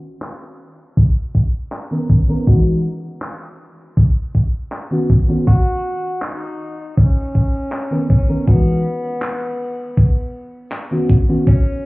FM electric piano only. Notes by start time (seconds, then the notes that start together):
1.91 D#3 B3 C#4 A#4
2.28 D#3 B3 C#4 A#4
2.46 E3 G#3 D#4 F#4
4.91 D#3 B3 C#4 F#4
5.28 D#3 B3 C#4 F#4
7.91 D#3 B3 C#4 A#4
8.28 D#3 B3 C#4 A#4
8.46 E3 G#3 D#4 F#4
10.91 D#3 B3 C#4 F#4
11.29 D#3 B3 C#4 F#4